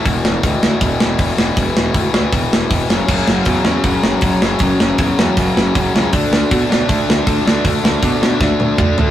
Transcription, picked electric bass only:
X:1
M:4/4
L:1/8
Q:1/4=158
K:F#m
V:1 name="Picked electric bass" clef=bass
E,,, E,,, D,, D,, E,,, E,,, E,,, E,,, | E,,, E,,, D,, D,, E,,, E,,, E,,, F,,, | F,,, F,,, E,, E,, F,,, F,,, F,,, F,,, | F,,, F,,, E,, E,, F,,, F,,, F,,, C,, |
D,, D,, B,, B,, D,, D,, D,, D,, | D,, D,, B,, B,, D,, D,, D,, D,, |]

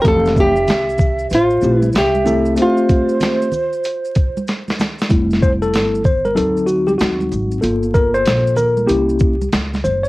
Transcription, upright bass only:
X:1
M:4/4
L:1/8
Q:"Swing 16ths" 1/4=95
K:F
V:1 name="Upright bass" clef=bass
F,,,2 C,,2 A,,, B,,, C,,2 | z8 | F,,,2 G,,,2 D,,2 _E,, _A,,, | G,,,2 B,,,2 C,,2 _D,, _G,,, |]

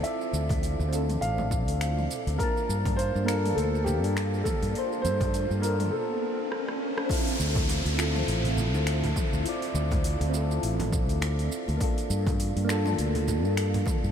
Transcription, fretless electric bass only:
X:1
M:4/4
L:1/16
Q:"Swing 16ths" 1/4=102
K:Dm
V:1 name="Fretless electric bass" clef=bass
z2 D,,3 D,,3 A,,,3 D,,3 z D,, | z2 G,,3 G,,3 D,,3 G,,3 z G,, | z2 G,,3 G,,3 z8 | z2 D,,3 D,,3 A,,,3 D,,3 z D,, |
z2 D,,3 D,,3 A,,,3 D,,3 z D,, | z2 G,,3 G,,3 D,,3 G,,3 z G,, |]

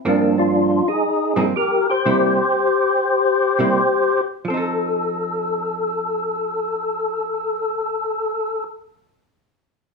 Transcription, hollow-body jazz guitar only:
X:1
M:4/4
L:1/8
Q:"Swing" 1/4=87
K:Fmix
V:1 name="Hollow-body jazz guitar"
[G,,F,B,C]3 z2 [G,,F,B,C] z2 | [C,G,B,=E] z4 [C,G,B,E] z2 | [F,CEA]8- | [F,CEA]8 |]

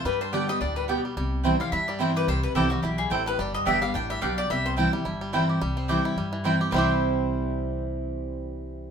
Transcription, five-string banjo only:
X:1
M:4/4
L:1/8
Q:"Swing" 1/4=216
K:C
V:1 name="Five-string banjo"
G, D G G, D G, B, G, | G,2 E G, E G, E G | G,2 G G, E G, C G, | G, B, D G, D G, D G |
G, C E G, E G, E G | G, C G E G, E, E G | [G,CEG]8- | [G,CEG]8 |]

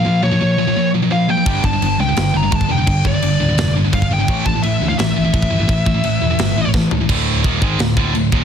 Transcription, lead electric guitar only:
X:1
M:4/4
L:1/16
Q:1/4=170
K:Dm
V:1 name="Lead electric guitar"
f2 ^c8 z2 f2 g2- | g2 a4 g4 b2 a2 g2- | g2 d8 z2 f2 g2- | g2 a2 e3 f e8- |
e12 z4 | z16 |]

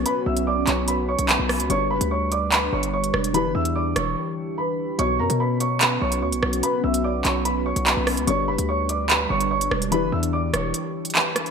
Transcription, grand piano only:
X:1
M:4/4
L:1/8
Q:1/4=146
K:Bm
V:1 name="Grand piano"
[Bb] [ee'] [dd'] [cc'] [Bb] [cc'] [Bb]2 | [cc'] [Bb] [cc'] [dd'] [Bb] [cc'] [cc']2 | [Bb] [ee'] [dd'] [cc']3 [Bb]2 | [cc'] [^A^a] [Bb] [cc'] [Bb] [cc'] [cc']2 |
[Bb] [ee'] [dd'] [cc'] [Bb] [cc'] [Bb]2 | [cc'] [Bb] [cc'] [dd'] [Bb] [cc'] [cc']2 | [Bb] [ee'] [dd'] [cc']3 [Bb]2 |]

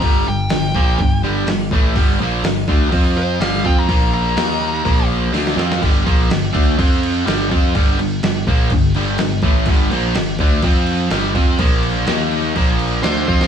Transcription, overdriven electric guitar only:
X:1
M:4/4
L:1/8
Q:1/4=125
K:Gm
V:1 name="Overdriven electric guitar" clef=bass
[G,,D,G,] [G,,D,] [G,,D,] [B,,F,B,] [G,,D,] [G,,D,G,] [G,,D,] [A,,=E,A,] | [G,,D,G,] [B,,F,B,] [G,,D,] [D,A,D] [F,CF]2 [G,,D,G,] [F,CF] | [B,,F,B,]2 [E,B,E]2 [B,,F,B,]2 [D,A,D] [F,CF] | [G,,D,G,] [B,,F,B,] [G,,D,] [D,A,D] [F,CF]2 [G,,D,G,] [F,CF] |
[G,,D,G,] [G,,D,] [G,,D,] [B,,F,B,] [G,,D,] [G,,D,G,] [G,,D,] [A,,=E,A,] | [G,,D,G,] [B,,F,B,] [G,,D,] [D,A,D] [F,CF]2 [G,,D,G,] [F,CF] | [B,,F,B,]2 [E,B,E]2 [B,,F,B,]2 [D,A,D] [F,CF] |]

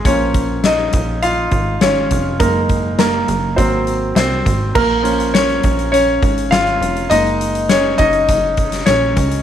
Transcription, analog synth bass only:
X:1
M:4/4
L:1/8
Q:1/4=102
K:Bbm
V:1 name="Analog synth bass" clef=bass
B,,,3 B,,,2 A,,, A,,, F,,, | G,,,3 G,,, A,,,2 C,, A,,, | B,,,3 B,,,2 A,,, A,,, F,,, | G,,,3 G,,, G,,,2 B,,, D,, |]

